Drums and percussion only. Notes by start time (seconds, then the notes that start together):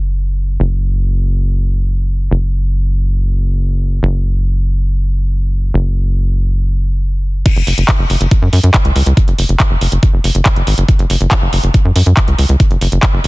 7.46 kick, closed hi-hat, crash
7.56 closed hi-hat
7.67 open hi-hat
7.78 closed hi-hat
7.89 kick, clap, closed hi-hat
8.10 open hi-hat
8.21 closed hi-hat
8.31 kick, closed hi-hat
8.53 open hi-hat
8.64 closed hi-hat
8.74 kick, clap, closed hi-hat
8.85 closed hi-hat
8.96 open hi-hat
9.06 closed hi-hat
9.17 kick, closed hi-hat
9.28 closed hi-hat
9.39 open hi-hat
9.49 closed hi-hat
9.60 kick, clap, closed hi-hat
9.81 open hi-hat
9.92 closed hi-hat
10.03 kick, closed hi-hat
10.24 open hi-hat
10.35 closed hi-hat
10.46 kick, clap, closed hi-hat
10.56 closed hi-hat
10.67 open hi-hat
10.78 closed hi-hat
10.88 kick, closed hi-hat
10.99 closed hi-hat
11.10 open hi-hat
11.21 closed hi-hat
11.31 kick, clap, closed hi-hat
11.53 open hi-hat
11.64 closed hi-hat
11.74 kick, closed hi-hat
11.96 open hi-hat
12.06 closed hi-hat
12.17 kick, clap, closed hi-hat
12.28 closed hi-hat
12.39 open hi-hat
12.49 closed hi-hat
12.60 kick, closed hi-hat
12.71 closed hi-hat
12.81 open hi-hat
12.92 closed hi-hat
13.03 kick, clap, closed hi-hat
13.24 open hi-hat